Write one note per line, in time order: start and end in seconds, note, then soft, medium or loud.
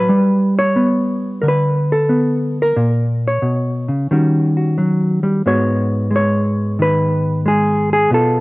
0.00 1.41 E4 soft
0.00 0.57 B4 loud
0.09 2.74 G3 medium
0.59 1.46 C#5 loud
0.76 2.08 B3 medium
1.42 2.74 D3 medium
1.42 1.45 A#4 medium
1.48 2.58 B4 medium
1.92 2.57 A4 medium
2.09 2.74 B3 medium
2.62 3.92 A#4 loud
2.76 3.42 A#2 medium
3.28 5.25 C#5 medium
3.42 3.88 B2 medium
3.88 4.11 C#3 soft
4.11 5.42 D#3 medium
4.11 4.77 G3 soft
4.11 5.42 C#4 soft
4.11 4.56 F#4 soft
4.57 5.42 F#4 soft
4.78 5.23 F#3 medium
5.23 5.45 G3 medium
5.46 8.10 G#2 medium
5.46 6.09 G#3 soft
5.46 8.11 B3 soft
5.46 8.10 F#4 soft
5.46 6.12 C#5 medium
6.11 7.44 G#3 medium
6.16 6.80 C#5 loud
6.79 8.09 D#3 medium
6.79 7.47 B4 loud
7.46 8.09 G#3 medium
7.46 7.91 G#4 medium
7.93 8.13 G#4 medium
8.11 8.40 B2 medium
8.11 8.40 B3 soft
8.11 8.40 F4 soft
8.11 8.40 A4 loud